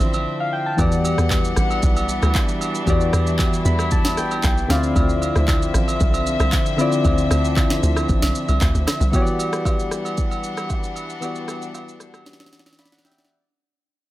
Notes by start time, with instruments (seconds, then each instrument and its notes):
Already playing: synth keys D3 C4 E4 F4 D5, string section D3 F3 C4 E5
0.00 log drum bass A1, shaker
0.13 high agogo, shaker
0.40 synth keys F5
0.53 synth keys G5
0.66 synth keys A5
0.77 log drum bass E2, synth keys E3 B3 F#4 G4, string section E3 G3 D4 F#5, kick, high agogo, shaker
0.81 synth keys D5
0.92 shaker
1.05 high agogo, shaker
1.18 log drum bass E2, cross-stick, shaker
1.30 kick, clap, high agogo, shaker
1.45 shaker
1.56 log drum bass A1, cross-stick, shaker
1.71 high agogo, shaker
1.83 log drum bass B1, kick, shaker
1.97 high agogo, shaker
2.09 shaker
2.22 log drum bass D2, cross-stick, high agogo, shaker
2.35 kick, clap, low woodblock, shaker
2.49 shaker
2.61 high agogo, shaker
2.75 shaker
2.86 log drum bass E2, synth keys E3 B3 F#4 G4, string section E4, kick, high agogo, shaker
2.90 synth keys D5
3.01 shaker
3.13 log drum bass E2, cross-stick, high agogo, shaker
3.27 shaker
3.39 kick, clap, high agogo, shaker
3.53 shaker
3.65 log drum bass E2, synth keys B5, shaker
3.79 cross-stick, high agogo, shaker
3.91 synth keys A5, kick, shaker
4.05 snare, high agogo, shaker
4.17 log drum bass A1, synth keys G5, cross-stick, shaker
4.31 high agogo, shaker
4.43 log drum bass B1, synth keys G5, kick, clap, low woodblock, shaker
4.58 shaker
4.68 log drum bass D2, synth keys D3 C4 E4 F4 F5, string section D3 F3 C4 E5, cross-stick, snare, high agogo, shaker
4.72 synth keys D5
4.83 shaker
4.96 log drum bass D2, kick, high agogo, shaker
5.09 shaker
5.22 high agogo, shaker
5.36 log drum bass D2, cross-stick, shaker
5.48 kick, clap, high agogo, shaker
5.62 shaker
5.74 log drum bass A1, cross-stick, shaker
5.88 high agogo, shaker
6.00 log drum bass B1, kick, shaker
6.14 high agogo, shaker
6.26 shaker
6.40 log drum bass C2, cross-stick, high agogo, shaker
6.52 kick, clap, low woodblock, shaker
6.66 shaker
6.77 synth keys D3 C4 E4 F4, high agogo, shaker
6.81 synth keys D5
6.92 shaker
7.05 log drum bass D2, kick, high agogo, shaker
7.18 shaker
7.31 log drum bass D2, cross-stick, high agogo, shaker
7.44 shaker
7.56 kick, clap, high agogo, low woodblock, shaker
7.70 snare, shaker
7.83 log drum bass D2, shaker
7.96 cross-stick, high agogo, shaker
8.09 log drum bass A1, kick, shaker
8.22 log drum bass B1, snare, high agogo, shaker
8.35 shaker
8.49 log drum bass C2, high agogo, shaker
8.61 log drum bass D2, kick, clap, low woodblock, shaker
8.75 log drum bass D2, shaker
8.87 cross-stick, snare, high agogo, shaker
9.00 log drum bass C2, shaker
9.12 synth keys E3 B3 F#4 G4, string section E3 G3 D4 F#5, kick, high agogo, shaker
9.16 synth keys C#5
9.22 synth keys D5
9.27 shaker
9.39 high agogo, shaker
9.53 cross-stick, shaker
9.65 kick, high agogo, low woodblock, shaker
9.80 shaker
9.91 cross-stick, shaker
10.05 high agogo, shaker
10.18 kick, shaker
10.31 high agogo, shaker
10.44 shaker
10.57 cross-stick, high agogo, shaker
10.70 kick, low woodblock, shaker
10.84 shaker
10.96 high agogo, shaker
11.10 shaker
11.20 synth keys E3 B3 F#4 G4, high agogo, shaker
11.25 synth keys D5
11.35 shaker
11.48 cross-stick, high agogo, shaker
11.62 shaker
11.74 high agogo, low woodblock, shaker
11.88 shaker
12.00 cross-stick, shaker
12.14 cross-stick, high agogo, shaker
12.26 snare, shaker
12.33 snare
12.40 snare, high agogo, shaker
12.46 snare
12.53 snare, shaker
12.59 snare
12.66 snare, high agogo, shaker
12.73 snare
12.78 synth keys D5 B5, snare, low woodblock, shaker
12.85 snare
12.92 synth keys F#5, snare, shaker
12.98 snare
13.05 synth keys E5 G5, snare, high agogo, shaker
13.12 snare
13.18 synth keys D5, snare, shaker
13.25 snare